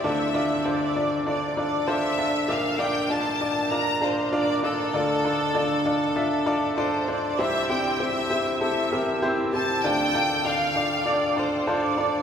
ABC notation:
X:1
M:4/4
L:1/8
Q:1/4=98
K:Dm
V:1 name="Violin section"
e2 d2 d d e2 | f g a2 b c d A- | A6 c d | e g e2 e2 z a |
g2 f2 d c d2 |]
V:2 name="Grand piano"
[DFAd] [DFAd] [DFAc] [DFAd] [DFAd] [DFAd] [DFAc] [DFAe] | [DFBd] [DFBd] [DFBd] [DFBd] [DFBd] [DFBd] [DFBd] [DFBd] | [DFAd] [DFAd] [DFAd] [DFAd] [DFAe] [DFAd] [DFAd] [DFAc] | [CEGc] [CEGc] [CEGc] [CEGc] [CEGA] [CEGB] [CEGc] [CEGc] |
[DFAd] [DFAd] [DFAd] [DFAd] [DFAd] [DFAd] [DFAc] [DFAd] |]
V:3 name="Grand piano" clef=bass
[D,,D,]8 | [B,,,B,,]8 | [D,,D,]8 | [C,,C,]8 |
[D,,D,]8 |]